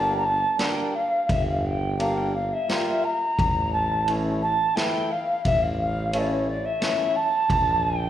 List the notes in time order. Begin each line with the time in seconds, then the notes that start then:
Already playing: G1 G3 A#3 D4 A5
0.17 A#5
0.25 A5
0.58 G3 A#3 D4 G5, snare, ride
0.95 F5
1.29 G1 E5, kick, ride
1.49 F5
1.66 G5
1.99 G3 A#3 D4 F5, ride
2.17 G5
2.35 F5
2.53 E5
2.68 G3 A#3 F4, snare, ride
3.04 A#5
3.38 A1, kick, ride
3.72 A5
4.08 E3 A3 C#4, ride
4.42 A5
4.76 E3 A3 E4 G5, snare, ride
5.11 F5
5.45 A1 E5, kick, ride
5.62 F5
5.80 F5
6.13 E3 A3 C#4 D5, ride
6.32 C#5
6.47 D5
6.65 E5
6.80 E3 A3 C#4, snare, ride
7.15 A5
7.50 A#1, kick, ride
7.83 G5